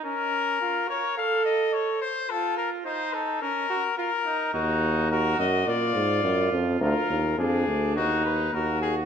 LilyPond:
<<
  \new Staff \with { instrumentName = "Trumpet" } { \time 4/4 \key bes \phrygian \tempo 4 = 106 bes'4. des''8 f''8 ees''8 des''8 c''8 | a'8 bes'8 c''8 a'8 bes'4 bes'4 | ges'4 bes'8 ees''8 d''4. r8 | bes'4 aes'4 ges'8 ces''8 bes'8 aes'8 | }
  \new Staff \with { instrumentName = "Trumpet" } { \time 4/4 \key bes \phrygian des'4 f'8 bes'8 a'4. r8 | f'4 ees'4 des'8 ges'8 f'8 ees'8 | ees'4 ges'4 f'2 | f'4 d'4 ees'4 ges'4 | }
  \new Staff \with { instrumentName = "Bass trombone" } { \clef bass \time 4/4 \key bes \phrygian r1 | r1 | ees,4. ges,8 bes,8 aes,8 ges,8 f,8 | d,8 ees,8 f,8 d,8 ees,4 ees,4 | }
>>